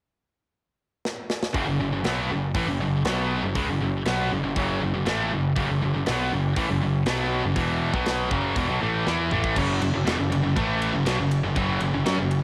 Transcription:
1.05 snare
1.30 snare
1.43 snare
1.54 F#1 F#2 C#3, kick, open hi-hat
1.67 F#1 F#2 C#3
1.80 F#1 F#2 C#3
1.92 F#1 F#2 C#3
2.04 B1 B2 F#3 B3, snare, open hi-hat
2.29 F#1 F#2 C#3
2.54 A1 A2 E3, kick, open hi-hat
2.67 F#1 F#2 C#3
2.79 F#1 F#2 C#3
3.05 B1 B2 F#3 B3, snare, open hi-hat
3.43 F#1 F#2 C#3
3.55 C#2 C#3 G#3, kick, open hi-hat
3.69 F#1 F#2 C#3
3.81 F#1 F#2 C#3
4.06 B1 B2 F#3 B3, snare, open hi-hat
4.32 F#1 F#2 C#3
4.44 F#1 F#2 C#3
4.56 F#1 F#2 C#3 F#3, kick, open hi-hat
4.81 F#1 F#2 C#3
4.94 F#1 F#2 C#3
5.06 A1 A2 E3 A3, snare, open hi-hat
5.32 F#1 F#2 C#3
5.56 F#1 F#2 C#3, kick, open hi-hat
5.71 F#1 F#2 C#3
5.82 F#1 F#2 C#3
5.95 F#1 F#2 C#3
6.06 B1 B2 F#3 B3, snare, open hi-hat
6.33 F#1 F#2 C#3
6.56 A1 A2 E3, kick, open hi-hat
6.69 F#1 F#2 C#3
6.83 F#1 F#2 C#3
7.06 B1 B2 F#3 B3, snare, open hi-hat
7.44 F#1 F#2 C#3
7.56 E1 E2 B2 E3, kick, open hi-hat
7.94 B1 B2 F#3 B3, kick
8.06 snare, open hi-hat
8.30 F#1 F#2 C#3 F#3, kick
8.56 E1 E2 B2, kick, open hi-hat
8.69 B1 B2 F#3
8.81 A1 A2 E3 A3
9.06 E2 E3 B3 E4, snare
9.31 A1 A2 E3 A3, mid tom
9.44 kick
9.56 F#1 F#2 C#3 F#3, kick, crash
9.81 F#1 F#2 C#3, ride
9.94 F#1 F#2 C#3
10.05 E1 E2 B2, snare, ride
10.18 F#1 F#2 C#3
10.30 F#1 F#2 C#3, ride
10.43 F#1 F#2 C#3
10.56 A1 A2 E3 A3, kick, ride
10.82 ride
10.94 F#1 F#2 C#3
11.06 B1 B2 F#3, snare, ride
11.19 F#1 F#2 C#3
11.31 ride
11.44 F#1 F#2 C#3
11.55 F#1 F#2 C#3 F#3, kick, ride
11.80 F#1 F#2 C#3, ride
11.93 F#1 F#2 C#3
12.05 F#2 F#3 C#4, snare, ride
12.18 F#1 F#2 C#3
12.31 ride

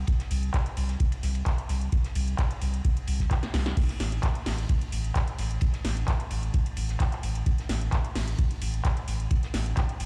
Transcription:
0.07 kick, closed hi-hat, ride
0.19 snare, closed hi-hat
0.31 C2, open hi-hat, ride
0.43 closed hi-hat
0.54 kick, snare, clap, closed hi-hat, ride
0.66 closed hi-hat
0.77 C2, open hi-hat, ride
0.88 snare, closed hi-hat
1.00 kick, closed hi-hat, ride
1.12 closed hi-hat, ride
1.23 C2, snare, open hi-hat
1.35 closed hi-hat, ride
1.46 kick, snare, clap, closed hi-hat, ride
1.58 closed hi-hat
1.69 C2, snare, open hi-hat, ride
1.81 closed hi-hat
1.92 kick, closed hi-hat, ride
2.04 snare, closed hi-hat
2.15 C2, open hi-hat, ride
2.28 closed hi-hat
2.38 kick, snare, clap, closed hi-hat, ride
2.51 closed hi-hat
2.61 C2, open hi-hat, ride
2.74 closed hi-hat
2.85 kick, closed hi-hat, ride
2.96 closed hi-hat, ride
3.07 C2, open hi-hat, ride
3.20 kick, snare, closed hi-hat
3.31 kick, snare, clap, closed hi-hat, ride
3.43 snare, closed hi-hat
3.54 C2, snare, open hi-hat, ride
3.66 snare, closed hi-hat, ride
3.77 kick, closed hi-hat, crash, ride
3.89 snare, closed hi-hat
4.00 A1, snare, open hi-hat, ride
4.12 closed hi-hat
4.22 kick, snare, clap, closed hi-hat, ride
4.35 closed hi-hat
4.46 A1, snare, open hi-hat
4.57 closed hi-hat, ride
4.69 kick, closed hi-hat, ride
4.81 closed hi-hat
4.92 A1, open hi-hat, ride
5.04 closed hi-hat
5.15 kick, snare, clap, closed hi-hat, ride
5.28 closed hi-hat
5.39 A1, snare, open hi-hat, ride
5.51 closed hi-hat
5.61 kick, closed hi-hat, ride
5.73 snare, closed hi-hat
5.84 A1, snare, open hi-hat, ride
5.97 closed hi-hat
6.08 kick, snare, clap, closed hi-hat, ride
6.20 closed hi-hat
6.31 A1, open hi-hat, ride
6.43 closed hi-hat
6.54 kick, closed hi-hat, ride
6.66 closed hi-hat, ride
6.77 A1, open hi-hat, ride
6.89 snare, closed hi-hat
7.00 kick, snare, clap, closed hi-hat, ride
7.12 clap, closed hi-hat
7.23 A1, open hi-hat, ride
7.35 closed hi-hat, ride
7.46 kick, closed hi-hat, ride
7.58 snare, closed hi-hat
7.69 A1, snare, open hi-hat, ride
7.81 closed hi-hat
7.92 kick, snare, clap, closed hi-hat, ride
8.05 closed hi-hat
8.15 A1, snare, open hi-hat
8.27 closed hi-hat, ride
8.38 kick, closed hi-hat, ride
8.51 closed hi-hat
8.62 A1, open hi-hat, ride
8.74 closed hi-hat
8.85 kick, snare, clap, closed hi-hat, ride
8.97 closed hi-hat
9.08 A1, snare, open hi-hat, ride
9.20 closed hi-hat
9.31 kick, closed hi-hat, ride
9.43 snare, closed hi-hat
9.54 A1, snare, open hi-hat, ride
9.66 closed hi-hat
9.77 kick, snare, clap, closed hi-hat, ride
9.89 closed hi-hat
10.00 A1, open hi-hat, ride

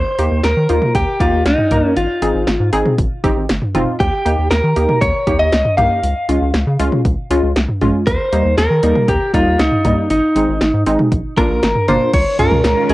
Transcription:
Already playing: C5
0.19 D#2 A#3 D#4 G4, closed hi-hat
0.31 D#2
0.44 D#2 A#4, snare, closed hi-hat
0.57 D#3
0.69 D#2 A#3 D#4 F4, closed hi-hat
0.82 mid tom
0.95 D#2 G4, kick, closed hi-hat
1.20 D#2 A#3 D#4 F4 G4, kick, closed hi-hat
1.33 D#2
1.46 C#2 D#4, snare, closed hi-hat
1.58 mid tom
1.71 C2 A#3 D#4 A#4, closed hi-hat, mid tom
1.97 G#1 F4, closed hi-hat
2.22 G#1 C4 D#4 G#4, closed hi-hat
2.35 G#1
2.47 G#1, snare, closed hi-hat
2.60 G#2
2.73 G#1 C4 D#4 G#4, closed hi-hat
2.85 mid tom
2.98 G#1, kick, closed hi-hat
3.24 G#1 C4 D#4 G4, kick, closed hi-hat
3.37 G#1
3.49 G1, snare, closed hi-hat
3.62 mid tom
3.75 F1 C4 D#4 F4, closed hi-hat, mid tom
4.00 D#2 G4, kick, closed hi-hat
4.25 D#2 A#3 D#4 G4, closed hi-hat
4.38 D#2
4.51 D#2 A#4, snare, closed hi-hat
4.64 D#3
4.76 D#2 A#3 D#4 G4, closed hi-hat
4.89 mid tom
5.01 D#2 C#5, kick, closed hi-hat
5.27 D#2 A#3 D#4 G4, kick, closed hi-hat
5.39 D#2 D#5
5.52 C#2, snare, closed hi-hat
5.65 mid tom
5.77 C2 A#3 D#4 G4 F5, closed hi-hat, mid tom
6.03 C#2, closed hi-hat
6.29 C#2 G#3 C#4 F4, closed hi-hat
6.42 C#2
6.54 C#2, snare, closed hi-hat
6.67 C#3
6.80 C#2 G#3 C#4 F4, closed hi-hat
6.92 mid tom
7.05 C#2, kick, closed hi-hat
7.30 C#2 G#3 C#4 F4, closed hi-hat
7.43 C#2
7.56 C2, snare, closed hi-hat
7.69 mid tom
7.81 A#1 G#3 C#4 F4, closed hi-hat, mid tom
8.07 D#2 C5, kick, closed hi-hat
8.32 D#2 G3 A#3 D#4, closed hi-hat
8.45 D#2
8.58 D#2 A#4, snare, closed hi-hat
8.71 D#3
8.83 D#2 G3 A#3 D#4, closed hi-hat
8.96 mid tom
9.08 D#2 G4, kick, closed hi-hat
9.34 D#2 G3 A#3 D#4 F4, kick, closed hi-hat
9.47 D#2
9.59 C#2 D#4, snare, closed hi-hat
9.72 mid tom
9.85 C2 G3 A#3 D#4, closed hi-hat, mid tom
10.10 G#1 D#4, closed hi-hat
10.36 G#1 G#3 C4 D#4, closed hi-hat
10.48 G#1
10.61 G#1, snare, closed hi-hat
10.74 G#2
10.86 G#1 G#3 C4 D#4, closed hi-hat
10.99 mid tom
11.12 A#1, kick, closed hi-hat
11.37 A#1 A#3 D4 F4 A#4, kick, closed hi-hat
11.50 A#1
11.63 G#1, snare, closed hi-hat
11.75 mid tom
11.88 G1 A#3 D4 F4 C5, closed hi-hat, mid tom
12.13 C#2 D#3 G#3 C#4 F4 C#5, kick, closed hi-hat, crash
12.39 C#2 G#3 C#4 F4 A#4, closed hi-hat, mid tom
12.51 C#2, mid tom
12.64 C#2, snare, closed hi-hat
12.90 C#2 G#3 C#4 F4 G#4, closed hi-hat

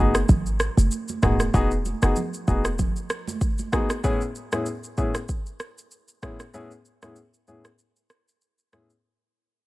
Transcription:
Already playing: F#1 B3 D#4 F#4
0.00 G#4
0.15 cross-stick, shaker
0.29 G#1, kick, low conga, shaker
0.46 shaker
0.60 cross-stick, shaker
0.77 F#1, high conga, shaker
0.91 shaker
1.08 high conga, shaker
1.22 D#1 B3 D#4 F#4 G#4, kick, cross-stick, mid tom, high conga, shaker
1.40 cross-stick, shaker
1.54 E1 B3 D#4 F#4 G#4, kick, shaker
1.71 shaker
1.85 high conga, shaker
2.02 F#1 B3 D#4 F#4 G#4, cross-stick, shaker
2.16 low conga, shaker
2.34 shaker
2.47 E1 B3 D#4 F#4 G#4, kick, high conga, shaker
2.65 cross-stick, shaker
2.79 kick, low conga, shaker
2.96 shaker
3.10 cross-stick, shaker
3.27 high conga, shaker
3.41 kick, shaker
3.58 high conga, shaker
3.72 B3 D#4 F#4 G#4, kick, cross-stick, high conga, shaker
3.90 cross-stick, shaker
4.04 A2 B3 C#4 E4 G#4, kick, shaker
4.21 shaker
4.35 shaker
4.52 A2 B3 C#4 E4 G#4, cross-stick, shaker
4.66 shaker
4.84 shaker
4.97 A2 B3 C#4 E4 G#4, kick, shaker
5.15 cross-stick, shaker
5.29 kick, shaker
5.46 shaker
5.60 cross-stick, shaker
5.78 shaker
5.91 shaker
6.08 shaker
6.22 A2 B3 C#4 E4 G#4, kick, cross-stick, shaker
6.40 cross-stick, shaker
6.54 A2 B3 C#4 E4 G#4, shaker
6.71 shaker
6.85 shaker
7.02 A2 B3 C#4 E4 G#4, cross-stick, shaker
7.16 shaker
7.34 shaker
7.48 A2 B3 C#4 E4 G#4, shaker
7.65 cross-stick, shaker
7.79 shaker
7.96 shaker
8.10 cross-stick, shaker
8.28 shaker
8.41 shaker
8.58 shaker
8.72 A2 B3 C#4 E4 G#4, cross-stick, shaker
8.90 shaker

